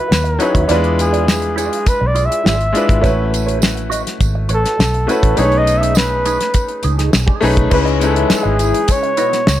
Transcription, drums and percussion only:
0.12 snare loud
0.12 tambourine medium
0.25 closed hi-hat soft
0.40 closed hi-hat medium
0.40 tambourine soft
0.55 kick medium
0.55 closed hi-hat medium
0.69 closed hi-hat medium
0.69 tambourine soft
0.84 closed hi-hat soft
0.99 closed hi-hat medium
0.99 tambourine soft
1.14 closed hi-hat medium
1.28 snare loud
1.28 tambourine medium
1.42 closed hi-hat soft
1.58 closed hi-hat medium
1.58 tambourine soft
1.73 closed hi-hat medium
1.86 kick medium
1.86 closed hi-hat medium
1.86 tambourine soft
2.16 closed hi-hat medium
2.16 tambourine soft
2.32 closed hi-hat medium
2.46 snare loud
2.46 tambourine medium
2.61 closed hi-hat soft
2.75 closed hi-hat medium
2.75 tambourine soft
2.89 kick medium
2.89 closed hi-hat medium
3.04 kick loud
3.04 closed hi-hat medium
3.04 tambourine soft
3.34 closed hi-hat medium
3.34 tambourine medium
3.48 closed hi-hat medium
3.62 snare loud
3.62 tambourine medium
3.77 closed hi-hat soft
3.92 closed hi-hat medium
3.92 tambourine medium
4.07 snare soft
4.07 closed hi-hat medium
4.21 kick medium
4.21 closed hi-hat medium
4.21 tambourine soft
4.49 closed hi-hat medium
4.65 snare soft
4.65 closed hi-hat medium
4.80 snare loud
4.80 tambourine medium
4.94 closed hi-hat soft
5.09 closed hi-hat medium
5.09 tambourine soft
5.23 kick medium
5.23 closed hi-hat medium
5.37 closed hi-hat medium
5.37 tambourine soft
5.52 closed hi-hat soft
5.67 closed hi-hat medium
5.67 tambourine medium
5.83 closed hi-hat medium
5.95 snare loud
5.95 tambourine medium
6.25 closed hi-hat medium
6.25 tambourine soft
6.41 snare soft
6.41 closed hi-hat medium
6.54 kick medium
6.54 closed hi-hat medium
6.54 tambourine soft
6.68 closed hi-hat soft
6.83 closed hi-hat medium
6.83 tambourine soft
6.99 snare soft
6.99 closed hi-hat medium
7.13 snare loud
7.13 tambourine medium
7.28 kick medium
7.42 open hi-hat medium
7.42 tambourine soft
7.57 kick medium
7.57 closed hi-hat medium
7.71 kick loud
7.71 crash loud
7.71 tambourine soft
7.87 closed hi-hat soft
8.01 closed hi-hat medium
8.01 tambourine soft
8.16 closed hi-hat medium
8.30 snare loud
8.30 tambourine medium
8.59 closed hi-hat medium
8.59 tambourine medium
8.74 closed hi-hat medium
8.88 kick medium
8.88 closed hi-hat loud
8.88 tambourine medium
9.03 closed hi-hat soft
9.17 closed hi-hat medium
9.17 tambourine soft
9.33 snare soft
9.33 closed hi-hat medium
9.47 snare loud
9.47 tambourine medium

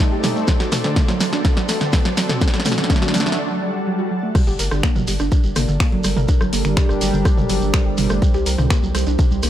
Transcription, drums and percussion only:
0.23 snare medium
0.23 mid tom medium
0.23 open hi-hat loud
0.23 ride medium
0.23 shekere medium
0.36 shekere soft
0.47 kick loud
0.47 snare medium
0.47 ride medium
0.47 shekere medium
0.60 snare soft
0.60 snare medium
0.60 shekere soft
0.72 snare medium
0.72 mid tom medium
0.72 open hi-hat loud
0.72 ride medium
0.72 shekere medium
0.84 snare medium
0.84 shekere soft
0.96 kick loud
0.96 snare loud
0.96 ride medium
0.96 shekere soft
1.08 snare medium
1.08 shekere soft
1.20 snare medium
1.20 open hi-hat loud
1.20 ride medium
1.20 shekere loud
1.32 snare soft
1.32 snare medium
1.32 shekere soft
1.44 kick loud
1.44 snare loud
1.44 ride medium
1.44 shekere medium
1.57 snare medium
1.69 snare loud
1.69 open hi-hat loud
1.69 ride medium
1.69 shekere medium
1.81 snare medium
1.81 snare soft
1.81 shekere soft
1.92 kick loud
1.92 snare loud
1.92 open hi-hat medium
1.92 shekere medium
2.05 snare medium
2.05 ride soft
2.17 snare loud
2.17 open hi-hat loud
2.17 ride medium
2.17 shekere medium
2.29 snare medium
2.29 snare soft
2.29 mid tom medium
2.29 shekere soft
2.41 kick loud
2.41 snare loud
2.41 ride medium
2.41 shekere medium
2.48 snare medium
2.54 snare loud
2.54 snare medium
2.54 ride medium
2.54 shekere soft
2.60 snare loud
2.65 snare loud
2.65 snare soft
2.65 mid tom medium
2.65 open hi-hat loud
2.65 shekere loud
2.72 snare medium
2.77 snare loud
2.77 ride medium
2.77 shekere soft
2.84 snare loud
2.90 kick loud
2.90 snare loud
2.90 ride medium
2.90 shekere soft
2.96 snare medium
3.02 snare medium
3.02 snare soft
3.02 shekere soft
3.08 snare medium
3.14 snare loud
3.14 open hi-hat loud
3.14 ride medium
3.14 shekere loud
3.20 snare medium
3.26 snare medium
3.26 shekere soft
3.32 snare loud
4.35 kick loud
4.35 cross-stick medium
4.35 mid tom loud
4.35 crash loud
4.35 ride medium
4.35 shekere soft
4.47 snare soft
4.47 shekere soft
4.59 open hi-hat loud
4.59 ride medium
4.59 shekere medium
4.71 cross-stick medium
4.71 snare medium
4.71 shekere soft
4.83 finger snap loud
4.83 kick loud
4.83 snare loud
4.83 ride medium
4.83 shekere medium
4.96 mid tom loud
4.96 shekere soft
5.07 open hi-hat loud
5.07 ride medium
5.07 shekere medium
5.19 cross-stick medium
5.19 snare soft
5.19 shekere soft
5.32 kick loud
5.32 ride medium
5.32 shekere medium
5.43 shekere soft
5.56 cross-stick medium
5.56 mid tom loud
5.56 open hi-hat loud
5.56 ride medium
5.56 shekere loud
5.68 snare soft
5.68 shekere soft
5.80 finger snap loud
5.80 kick loud
5.80 snare loud
5.80 open hi-hat medium
5.80 shekere medium
5.92 ride soft
6.04 cross-stick medium
6.04 open hi-hat loud
6.04 ride medium
6.04 shekere medium
6.16 snare medium
6.16 mid tom loud
6.16 shekere soft
6.28 kick loud
6.28 ride medium
6.28 shekere medium
6.41 cross-stick medium
6.41 shekere soft
6.53 open hi-hat loud
6.53 ride medium
6.53 shekere loud
6.65 finger snap soft
6.65 shekere soft
6.77 finger snap loud
6.77 kick loud
6.77 snare loud
6.77 mid tom medium
6.77 ride medium
6.77 shekere medium
6.89 cross-stick medium
6.89 snare soft
6.89 shekere soft
7.01 open hi-hat loud
7.01 ride medium
7.01 shekere loud
7.13 shekere soft
7.25 kick loud
7.25 cross-stick medium
7.25 ride medium
7.25 shekere medium
7.38 mid tom medium
7.38 shekere soft
7.49 snare soft
7.49 open hi-hat loud
7.49 ride medium
7.49 shekere loud
7.61 shekere soft
7.74 finger snap loud
7.74 kick loud
7.74 cross-stick medium
7.74 snare loud
7.74 ride medium
7.74 shekere medium
7.97 mid tom loud
7.97 open hi-hat loud
7.97 ride medium
7.97 shekere loud
8.09 cross-stick medium
8.09 shekere soft
8.22 kick loud
8.22 ride medium
8.22 shekere medium
8.34 snare soft
8.34 shekere soft
8.46 open hi-hat loud
8.46 ride medium
8.46 shekere loud
8.58 cross-stick medium
8.58 snare medium
8.58 mid tom medium
8.58 shekere soft
8.70 finger snap loud
8.70 kick loud
8.70 snare loud
8.70 ride medium
8.70 shekere medium
8.83 shekere soft
8.95 cross-stick medium
8.95 open hi-hat loud
8.95 ride medium
8.95 shekere loud
9.06 snare soft
9.06 shekere soft
9.19 kick loud
9.19 mid tom loud
9.19 ride medium
9.19 shekere medium
9.31 shekere soft
9.43 cross-stick medium
9.43 open hi-hat loud
9.43 ride medium
9.43 shekere loud

